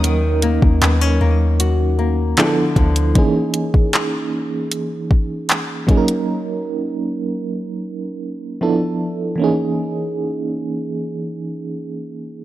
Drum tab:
HH |x-x-x---x---x-xx|x-x-x---x---x-xx|----------------|----------------|
CP |----x-------x---|----x-------x---|----------------|----------------|
BD |---o----------o-|o--o------o---o-|----------------|----------------|